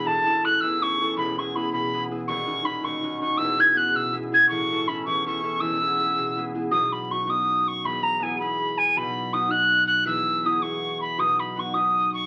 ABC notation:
X:1
M:6/8
L:1/16
Q:3/8=108
K:E
V:1 name="Tin whistle"
a4 f'2 e'2 c'4 | b2 c'2 b2 b6 | c'4 b2 c'4 c'2 | e'2 g'2 f'2 e'2 z2 g'2 |
c'4 b2 c'2 c'4 | e'8- e'2 z2 | [K:B] d'2 b2 c'2 d'4 c'2 | b2 a3/2 a/2 g2 b4 g2 |
b4 d'2 f'4 f'2 | e'4 d'2 c'4 b2 | d'2 b2 c'2 d'4 c'2 |]
V:2 name="Harp"
[A,,,A,,]2 [CEA]2 [CEA]2 E,,2 [CEA]2 [CEA]2 | [E,,,E,,]2 [B,EG]2 [B,EG]2 B,,2 [B,EG]2 [B,EG]2 | [D,,,D,,]2 [CDF]2 [CDF]2 D,,2 [CDF]2 [CDF]2 | [E,,,E,,]2 [B,EG]2 [B,EG]2 B,,2 [B,EG]2 [B,EG]2 |
[A,,,A,,]2 [CEA]2 [CEA]2 E,,2 [CEA]2 [CEA]2 | [E,,,E,,]2 [B,EG]2 [B,EG]2 B,,2 [B,EG]2 [B,EG]2 | [K:B] [B,,,B,,]4 [B,DF]2 [B,DF]4 z2 | [E,,,E,,]4 [B,EG]2 [B,EG]4 z2 |
[B,,,B,,]4 [B,DF]2 [B,DF]4 z2 | [E,,,E,,]4 [B,EG]2 [B,EG]4 z2 | [B,,,B,,]4 [B,DF]2 [B,DF]4 z2 |]